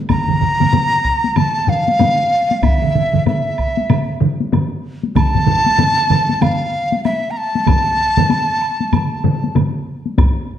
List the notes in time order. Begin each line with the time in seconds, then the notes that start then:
0.09 A#5, taiko, taiko low-mid, taiko mid, taiko high, high woodblock
0.28 taiko low-mid, taiko mid
0.41 taiko low-mid, taiko mid
0.60 taiko low-mid, taiko mid, taiko high
0.73 taiko low-mid, taiko mid, taiko high, high woodblock
1.04 taiko, high woodblock
1.24 taiko high
1.36 A5, taiko low-mid, taiko mid, taiko high, high woodblock
1.68 F5, taiko low-mid, taiko mid
1.88 taiko high
1.99 taiko low-mid, taiko mid, taiko high, high woodblock
2.51 taiko high
2.63 E5, taiko, taiko low-mid, taiko mid, taiko high, high woodblock
2.82 taiko low-mid, taiko mid
2.95 taiko low-mid, taiko mid
3.14 taiko low-mid, taiko mid
3.26 E5, taiko low-mid, taiko mid, taiko high, high woodblock
3.58 taiko, high woodblock
3.77 taiko high
3.90 taiko low-mid, taiko mid, taiko high, high woodblock
4.21 taiko low-mid, taiko mid
4.40 taiko high
4.53 taiko low-mid, taiko mid, taiko high, high woodblock
5.03 taiko high
5.16 A5, taiko, taiko low-mid, taiko mid, taiko high, high woodblock
5.35 taiko low-mid, taiko mid
5.47 taiko low-mid, taiko mid
5.66 taiko high
5.78 taiko low-mid, taiko mid, taiko high, high woodblock
6.10 taiko, taiko low-mid, taiko mid, high woodblock
6.29 taiko high
6.41 F5, taiko low-mid, taiko mid, taiko high, high woodblock
6.92 taiko high
7.04 E5, taiko high, high woodblock
7.31 A#5
7.37 A5
7.55 taiko high
7.67 taiko, taiko low-mid, taiko mid, taiko high, high woodblock
8.17 taiko low-mid, taiko mid, taiko high
8.30 taiko high, high woodblock
8.61 high woodblock
8.80 taiko high
8.92 taiko low-mid, taiko mid, taiko high, high woodblock
9.24 taiko low-mid, taiko mid
9.44 taiko high
9.55 taiko low-mid, taiko mid, taiko high, high woodblock
10.06 taiko high
10.18 taiko, taiko low-mid, taiko high, high woodblock